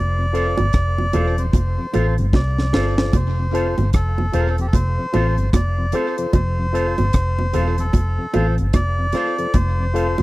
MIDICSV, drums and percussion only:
0, 0, Header, 1, 2, 480
1, 0, Start_track
1, 0, Key_signature, -1, "major"
1, 0, Tempo, 800000
1, 1881, Time_signature, 4, 2, 24, 8
1, 6135, End_track
2, 0, Start_track
2, 0, Title_t, "Drums"
2, 209, Note_on_c, 9, 42, 91
2, 269, Note_off_c, 9, 42, 0
2, 345, Note_on_c, 9, 60, 71
2, 350, Note_on_c, 9, 42, 43
2, 405, Note_off_c, 9, 60, 0
2, 410, Note_off_c, 9, 42, 0
2, 437, Note_on_c, 9, 42, 82
2, 443, Note_on_c, 9, 36, 116
2, 445, Note_on_c, 9, 37, 100
2, 497, Note_off_c, 9, 42, 0
2, 503, Note_off_c, 9, 36, 0
2, 505, Note_off_c, 9, 37, 0
2, 591, Note_on_c, 9, 60, 47
2, 651, Note_off_c, 9, 60, 0
2, 679, Note_on_c, 9, 42, 93
2, 681, Note_on_c, 9, 60, 55
2, 681, Note_on_c, 9, 61, 76
2, 739, Note_off_c, 9, 42, 0
2, 741, Note_off_c, 9, 60, 0
2, 741, Note_off_c, 9, 61, 0
2, 828, Note_on_c, 9, 42, 60
2, 888, Note_off_c, 9, 42, 0
2, 919, Note_on_c, 9, 60, 72
2, 921, Note_on_c, 9, 36, 124
2, 927, Note_on_c, 9, 42, 94
2, 979, Note_off_c, 9, 60, 0
2, 981, Note_off_c, 9, 36, 0
2, 987, Note_off_c, 9, 42, 0
2, 1162, Note_on_c, 9, 60, 76
2, 1164, Note_on_c, 9, 42, 64
2, 1222, Note_off_c, 9, 60, 0
2, 1224, Note_off_c, 9, 42, 0
2, 1308, Note_on_c, 9, 42, 49
2, 1368, Note_off_c, 9, 42, 0
2, 1400, Note_on_c, 9, 36, 127
2, 1401, Note_on_c, 9, 60, 82
2, 1405, Note_on_c, 9, 38, 65
2, 1460, Note_off_c, 9, 36, 0
2, 1461, Note_off_c, 9, 60, 0
2, 1465, Note_off_c, 9, 38, 0
2, 1551, Note_on_c, 9, 38, 58
2, 1611, Note_off_c, 9, 38, 0
2, 1639, Note_on_c, 9, 61, 66
2, 1643, Note_on_c, 9, 38, 95
2, 1699, Note_off_c, 9, 61, 0
2, 1703, Note_off_c, 9, 38, 0
2, 1788, Note_on_c, 9, 38, 96
2, 1848, Note_off_c, 9, 38, 0
2, 1879, Note_on_c, 9, 60, 74
2, 1880, Note_on_c, 9, 36, 119
2, 1880, Note_on_c, 9, 42, 91
2, 1939, Note_off_c, 9, 60, 0
2, 1940, Note_off_c, 9, 36, 0
2, 1940, Note_off_c, 9, 42, 0
2, 2129, Note_on_c, 9, 42, 90
2, 2189, Note_off_c, 9, 42, 0
2, 2266, Note_on_c, 9, 60, 61
2, 2270, Note_on_c, 9, 42, 49
2, 2326, Note_off_c, 9, 60, 0
2, 2330, Note_off_c, 9, 42, 0
2, 2358, Note_on_c, 9, 42, 84
2, 2363, Note_on_c, 9, 36, 109
2, 2366, Note_on_c, 9, 37, 106
2, 2418, Note_off_c, 9, 42, 0
2, 2423, Note_off_c, 9, 36, 0
2, 2426, Note_off_c, 9, 37, 0
2, 2508, Note_on_c, 9, 60, 55
2, 2568, Note_off_c, 9, 60, 0
2, 2601, Note_on_c, 9, 42, 86
2, 2601, Note_on_c, 9, 61, 71
2, 2661, Note_off_c, 9, 42, 0
2, 2661, Note_off_c, 9, 61, 0
2, 2749, Note_on_c, 9, 42, 58
2, 2809, Note_off_c, 9, 42, 0
2, 2839, Note_on_c, 9, 60, 70
2, 2840, Note_on_c, 9, 36, 120
2, 2847, Note_on_c, 9, 42, 102
2, 2899, Note_off_c, 9, 60, 0
2, 2900, Note_off_c, 9, 36, 0
2, 2907, Note_off_c, 9, 42, 0
2, 3082, Note_on_c, 9, 60, 74
2, 3084, Note_on_c, 9, 42, 72
2, 3142, Note_off_c, 9, 60, 0
2, 3144, Note_off_c, 9, 42, 0
2, 3227, Note_on_c, 9, 42, 49
2, 3287, Note_off_c, 9, 42, 0
2, 3319, Note_on_c, 9, 36, 110
2, 3320, Note_on_c, 9, 42, 106
2, 3321, Note_on_c, 9, 60, 86
2, 3323, Note_on_c, 9, 37, 127
2, 3379, Note_off_c, 9, 36, 0
2, 3380, Note_off_c, 9, 42, 0
2, 3381, Note_off_c, 9, 60, 0
2, 3383, Note_off_c, 9, 37, 0
2, 3553, Note_on_c, 9, 42, 88
2, 3557, Note_on_c, 9, 61, 64
2, 3613, Note_off_c, 9, 42, 0
2, 3617, Note_off_c, 9, 61, 0
2, 3707, Note_on_c, 9, 42, 64
2, 3767, Note_off_c, 9, 42, 0
2, 3800, Note_on_c, 9, 42, 91
2, 3800, Note_on_c, 9, 60, 83
2, 3801, Note_on_c, 9, 36, 120
2, 3860, Note_off_c, 9, 42, 0
2, 3860, Note_off_c, 9, 60, 0
2, 3861, Note_off_c, 9, 36, 0
2, 4051, Note_on_c, 9, 42, 82
2, 4111, Note_off_c, 9, 42, 0
2, 4188, Note_on_c, 9, 60, 70
2, 4191, Note_on_c, 9, 42, 47
2, 4248, Note_off_c, 9, 60, 0
2, 4251, Note_off_c, 9, 42, 0
2, 4278, Note_on_c, 9, 42, 90
2, 4284, Note_on_c, 9, 36, 110
2, 4286, Note_on_c, 9, 37, 115
2, 4338, Note_off_c, 9, 42, 0
2, 4344, Note_off_c, 9, 36, 0
2, 4346, Note_off_c, 9, 37, 0
2, 4431, Note_on_c, 9, 60, 49
2, 4491, Note_off_c, 9, 60, 0
2, 4521, Note_on_c, 9, 42, 96
2, 4523, Note_on_c, 9, 61, 71
2, 4581, Note_off_c, 9, 42, 0
2, 4583, Note_off_c, 9, 61, 0
2, 4667, Note_on_c, 9, 42, 61
2, 4727, Note_off_c, 9, 42, 0
2, 4759, Note_on_c, 9, 60, 68
2, 4763, Note_on_c, 9, 36, 127
2, 4766, Note_on_c, 9, 42, 98
2, 4819, Note_off_c, 9, 60, 0
2, 4823, Note_off_c, 9, 36, 0
2, 4826, Note_off_c, 9, 42, 0
2, 5002, Note_on_c, 9, 60, 86
2, 5004, Note_on_c, 9, 42, 71
2, 5062, Note_off_c, 9, 60, 0
2, 5064, Note_off_c, 9, 42, 0
2, 5148, Note_on_c, 9, 42, 50
2, 5208, Note_off_c, 9, 42, 0
2, 5240, Note_on_c, 9, 42, 108
2, 5242, Note_on_c, 9, 36, 118
2, 5242, Note_on_c, 9, 60, 82
2, 5244, Note_on_c, 9, 37, 112
2, 5300, Note_off_c, 9, 42, 0
2, 5302, Note_off_c, 9, 36, 0
2, 5302, Note_off_c, 9, 60, 0
2, 5304, Note_off_c, 9, 37, 0
2, 5474, Note_on_c, 9, 42, 90
2, 5477, Note_on_c, 9, 61, 63
2, 5490, Note_on_c, 9, 37, 75
2, 5534, Note_off_c, 9, 42, 0
2, 5537, Note_off_c, 9, 61, 0
2, 5550, Note_off_c, 9, 37, 0
2, 5631, Note_on_c, 9, 42, 63
2, 5691, Note_off_c, 9, 42, 0
2, 5723, Note_on_c, 9, 60, 77
2, 5724, Note_on_c, 9, 42, 94
2, 5725, Note_on_c, 9, 36, 118
2, 5783, Note_off_c, 9, 60, 0
2, 5784, Note_off_c, 9, 42, 0
2, 5785, Note_off_c, 9, 36, 0
2, 5975, Note_on_c, 9, 42, 91
2, 6035, Note_off_c, 9, 42, 0
2, 6109, Note_on_c, 9, 60, 69
2, 6114, Note_on_c, 9, 42, 45
2, 6135, Note_off_c, 9, 42, 0
2, 6135, Note_off_c, 9, 60, 0
2, 6135, End_track
0, 0, End_of_file